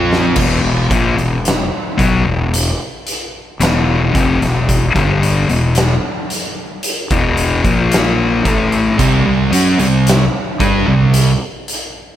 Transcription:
0.00 0.34 F2 loud
0.00 0.35 F3 medium
0.00 0.35 C4 medium
0.00 0.35 F4 loud
0.13 snare medium
0.35 0.62 E1 loud
0.35 0.62 E2 medium
0.35 0.62 B2 loud
0.35 kick loud
0.35 crash loud
0.63 0.89 E1 medium
0.63 0.91 E2 medium
0.63 0.90 B2 medium
0.90 1.16 A#1 medium
0.90 1.16 A#2 loud
0.90 1.17 F3 loud
0.90 kick loud
0.90 closed hi-hat medium
1.17 1.69 E1 medium
1.17 1.61 E2 medium
1.17 1.61 B2 medium
1.17 closed hi-hat soft
1.45 snare loud
1.45 closed hi-hat loud
1.98 2.24 B1 loud
1.98 2.24 B2 medium
1.98 2.24 F#3 loud
1.98 kick loud
1.98 closed hi-hat medium
2.24 2.76 E1 medium
2.24 2.69 E2 medium
2.24 2.69 B2 medium
2.54 closed hi-hat loud
3.07 closed hi-hat medium
3.60 4.11 E1 medium
3.60 4.13 E2 medium
3.60 4.13 B2 medium
3.60 4.14 E3 loud
3.60 snare loud
3.60 closed hi-hat loud
4.14 4.40 F1 loud
4.14 4.40 F2 medium
4.14 4.41 C3 loud
4.14 kick loud
4.14 closed hi-hat medium
4.41 4.92 E1 medium
4.41 4.85 E2 medium
4.41 4.85 B2 medium
4.41 snare soft
4.41 closed hi-hat medium
4.69 kick loud
4.69 closed hi-hat loud
4.95 5.46 G1 loud
4.95 5.48 G2 medium
4.95 5.48 D3 loud
4.95 5.48 G3 loud
4.95 kick loud
4.95 closed hi-hat soft
5.23 closed hi-hat medium
5.49 5.99 E1 medium
5.49 5.93 E2 medium
5.49 5.93 B2 medium
5.49 closed hi-hat soft
5.75 snare loud
5.75 closed hi-hat loud
6.30 closed hi-hat medium
6.83 closed hi-hat loud
7.11 7.61 E1 medium
7.11 7.63 E2 medium
7.11 7.63 B2 medium
7.11 7.64 E3 medium
7.11 kick loud
7.11 closed hi-hat medium
7.37 closed hi-hat medium
7.64 8.41 A#1 loud
7.64 8.43 A#2 loud
7.64 8.44 F3 loud
7.64 8.44 A#3 loud
7.64 kick medium
7.64 closed hi-hat medium
7.92 snare loud
7.92 closed hi-hat loud
8.45 8.95 A1 loud
8.45 8.97 A2 loud
8.45 8.98 E3 medium
8.45 8.98 A3 loud
8.45 kick loud
8.45 closed hi-hat medium
8.72 closed hi-hat medium
8.99 9.24 C2 loud
8.99 9.24 C3 loud
8.99 9.25 G3 loud
8.99 kick loud
8.99 closed hi-hat loud
9.26 9.51 C2 medium
9.26 9.52 C3 medium
9.26 9.52 G3 medium
9.52 9.77 F#2 loud
9.52 9.78 F#3 loud
9.52 9.78 C#4 loud
9.52 closed hi-hat medium
9.79 10.29 C2 medium
9.79 10.23 C3 medium
9.79 10.23 G3 medium
9.79 closed hi-hat medium
10.07 snare loud
10.07 closed hi-hat loud
10.60 10.85 G2 medium
10.60 10.85 G3 loud
10.60 10.86 D4 loud
10.60 kick loud
10.60 closed hi-hat medium
10.86 11.37 C2 medium
10.86 11.30 C3 medium
10.86 11.30 G3 medium
11.14 closed hi-hat loud
11.68 closed hi-hat medium

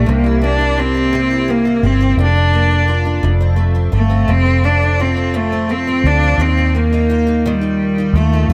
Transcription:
0.00 0.10 A3 loud
0.00 0.14 D4 medium
0.00 0.77 G4 medium
0.06 1.80 C2 loud
0.06 1.11 C3 medium
0.06 0.43 A#3 loud
0.24 0.57 E4 medium
0.41 1.47 A#3 medium
0.41 0.81 D4 loud
0.59 0.93 E4 medium
0.77 1.52 C4 loud
0.77 1.82 G4 medium
0.95 1.29 E4 medium
1.13 2.25 C3 medium
1.31 1.64 E4 medium
1.48 2.25 A#3 medium
1.48 1.87 A#3 loud
1.65 1.99 E4 medium
1.83 2.16 G1 medium
1.83 2.20 C4 medium
1.83 2.25 G4 medium
2.00 2.25 E4 medium
2.17 3.19 F1 loud
2.17 3.22 F2 medium
2.22 3.21 D4 loud
2.35 2.69 D4 medium
2.53 3.30 A#3 medium
2.71 3.04 D4 medium
2.88 3.91 F4 medium
3.05 3.30 D4 medium
3.23 3.90 F1 loud
3.23 4.27 F2 medium
3.41 3.74 C4 medium
3.56 4.63 A3 medium
3.75 4.09 C4 medium
3.92 4.26 G1 medium
3.92 4.32 A3 loud
3.92 4.99 F4 medium
4.10 4.45 C4 medium
4.28 6.00 F1 loud
4.28 5.33 F2 medium
4.28 4.67 C4 loud
4.45 4.81 C4 medium
4.64 5.68 A3 medium
4.64 5.03 D4 loud
4.82 5.15 C4 medium
5.00 5.38 C4 medium
5.00 6.05 F4 medium
5.16 5.51 C4 medium
5.34 6.46 F2 medium
5.34 5.73 A3 loud
5.52 5.86 C4 medium
5.69 6.46 A3 medium
5.69 6.08 C4 loud
5.87 6.21 C4 medium
6.04 6.37 D2 medium
6.04 6.43 D4 loud
6.04 6.61 F4 medium
6.23 6.47 C4 medium
6.38 8.10 D#2 loud
6.38 7.44 D#3 medium
6.38 6.78 C4 loud
6.58 6.91 D#4 medium
6.75 7.80 A#3 medium
6.75 7.48 A#3 loud
6.92 7.26 D#4 medium
7.10 8.15 F4 medium
7.27 7.60 D#4 medium
7.46 8.53 D#3 medium
7.46 8.18 G3 medium
7.61 7.97 D#4 medium
7.98 8.32 D#4 medium
8.13 8.47 D#2 loud
8.13 8.51 A3 loud
8.13 8.53 F4 medium
8.33 8.53 D#4 medium
8.49 8.53 F2 loud
8.49 8.53 F2 medium

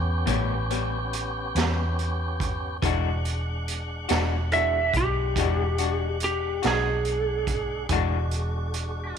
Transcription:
0.00 0.24 E2 medium
0.00 2.77 B3 medium
0.00 2.77 C#4 medium
0.00 2.77 G4 medium
0.26 1.51 A1 medium
0.26 0.52 A2 medium
0.26 0.53 G3 medium
0.26 0.53 B3 medium
0.26 0.53 C#4 medium
0.26 kick medium
0.26 closed hi-hat medium
0.70 0.97 G3 soft
0.70 0.96 B3 soft
0.70 0.96 C#4 medium
0.70 closed hi-hat medium
1.13 closed hi-hat medium
1.55 2.78 E2 medium
1.55 1.82 G3 soft
1.55 1.81 B3 soft
1.55 1.81 C#4 medium
1.55 snare medium
1.55 closed hi-hat medium
1.99 closed hi-hat soft
2.40 kick medium
2.40 closed hi-hat soft
2.82 4.05 E1 medium
2.82 3.08 E3 medium
2.82 7.87 G#3 medium
2.82 3.08 G#3 medium
2.82 7.87 D4 medium
2.82 3.09 D4 medium
2.82 3.09 F#4 medium
2.82 7.87 F#5 medium
2.82 kick loud
2.82 closed hi-hat medium
3.25 closed hi-hat medium
3.68 closed hi-hat medium
4.09 4.91 E1 medium
4.09 4.35 G#3 soft
4.09 4.35 D4 medium
4.09 4.34 F#4 medium
4.09 snare loud
4.09 closed hi-hat medium
4.52 4.77 E3 medium
4.52 4.78 G#3 medium
4.52 4.78 D4 medium
4.52 4.78 F#4 medium
4.52 4.94 E5 medium
4.52 closed hi-hat medium
4.94 5.33 B1 medium
4.94 6.19 G4 medium
4.94 kick medium
4.94 closed hi-hat medium
5.36 6.59 E1 medium
5.36 5.63 E3 medium
5.36 5.63 G#3 medium
5.36 5.63 D4 medium
5.36 5.63 F#4 medium
5.36 kick medium
5.36 closed hi-hat medium
5.78 6.05 G#3 soft
5.78 6.05 D4 soft
5.78 6.04 F#4 soft
5.78 closed hi-hat medium
6.20 closed hi-hat medium
6.24 6.64 G4 medium
6.62 7.87 B1 medium
6.62 6.90 G#3 soft
6.62 6.89 D4 soft
6.62 6.88 F#4 soft
6.62 snare medium
6.62 closed hi-hat medium
6.67 9.15 G#4 loud
7.05 closed hi-hat soft
7.47 kick medium
7.47 closed hi-hat medium
7.88 9.13 E1 medium
7.88 8.16 E3 medium
7.88 9.18 G#3 medium
7.88 8.16 G#3 medium
7.88 9.18 D4 medium
7.88 8.17 D4 medium
7.88 9.18 F#4 medium
7.88 kick medium
7.88 closed hi-hat medium
7.93 8.17 F#4 loud
8.31 closed hi-hat medium
8.74 closed hi-hat medium

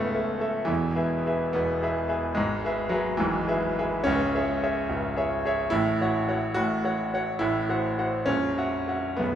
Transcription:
0.00 0.71 C#1 medium
0.00 0.71 C#2 medium
0.00 0.68 A3 loud
0.00 0.71 B3 loud
0.00 0.72 C#4 medium
0.00 0.15 A4 medium
0.00 0.15 E5 medium
0.15 0.39 A4 medium
0.15 0.39 E5 medium
0.40 0.66 A4 medium
0.40 0.66 E5 medium
0.65 0.95 E1 medium
0.65 0.96 E2 medium
0.65 1.53 E3 loud
0.96 1.22 G#4 medium
0.96 1.23 B4 medium
0.96 1.23 E5 medium
1.26 1.52 G#4 medium
1.26 1.52 B4 medium
1.26 1.53 E5 medium
1.53 1.82 E1 medium
1.53 1.82 E2 medium
1.53 2.36 B3 loud
1.83 2.07 G#4 medium
1.83 2.07 B4 medium
1.83 2.08 E5 medium
2.09 2.34 G#4 medium
2.09 2.34 B4 medium
2.09 2.34 E5 medium
2.35 2.63 G#1 medium
2.35 2.64 G#2 medium
2.35 2.91 G#3 loud
2.65 2.90 G#4 medium
2.65 2.90 B4 medium
2.65 2.90 E5 medium
2.89 3.19 F#3 loud
2.89 3.17 G#4 medium
2.89 3.17 B4 medium
2.89 3.17 E5 medium
3.17 3.48 G#1 medium
3.17 3.48 G#2 medium
3.17 4.06 E3 loud
3.47 3.74 G#4 medium
3.47 3.75 B4 medium
3.47 3.75 E5 medium
3.79 4.05 G#4 medium
3.79 4.05 B4 medium
3.79 4.05 E5 medium
4.04 4.34 C#1 medium
4.04 4.34 C#2 medium
4.04 5.71 C#4 loud
4.35 4.60 G#4 medium
4.35 4.60 C#5 medium
4.35 4.60 E5 medium
4.63 4.87 G#4 medium
4.63 4.88 C#5 medium
4.63 4.88 E5 medium
4.89 5.16 C#1 medium
4.89 5.16 C#2 medium
5.17 5.42 G#4 medium
5.17 5.42 C#5 medium
5.17 5.42 E5 medium
5.46 5.70 G#4 medium
5.46 5.71 C#5 medium
5.46 5.71 E5 medium
5.70 5.99 A1 medium
5.70 5.99 A2 medium
5.70 6.55 E4 loud
6.01 6.26 F#4 medium
6.01 6.26 C#5 medium
6.01 6.27 F#5 medium
6.28 6.53 F#4 medium
6.28 6.54 C#5 medium
6.28 6.54 F#5 medium
6.54 6.84 A1 medium
6.54 6.84 A2 medium
6.54 6.83 F#4 loud
6.85 7.10 F#4 medium
6.85 7.10 C#5 medium
6.85 7.10 F#5 medium
7.14 7.39 F#4 medium
7.14 7.39 C#5 medium
7.14 7.40 F#5 medium
7.39 7.69 A1 medium
7.39 7.69 A2 medium
7.39 8.27 E4 loud
7.69 7.96 F#4 medium
7.69 7.96 C5 medium
7.69 7.96 F#5 medium
7.99 8.25 F#4 medium
7.99 8.26 C5 medium
7.99 8.25 F#5 medium
8.26 8.57 A#0 medium
8.26 8.57 A#1 medium
8.26 9.19 C#4 loud
8.58 8.86 F#4 medium
8.58 8.86 E5 medium
8.58 8.86 F#5 medium
8.88 9.16 F#4 medium
8.88 9.17 E5 medium
8.88 9.17 F#5 medium
9.17 9.35 B0 medium
9.17 9.35 B1 medium
9.17 9.35 B3 medium

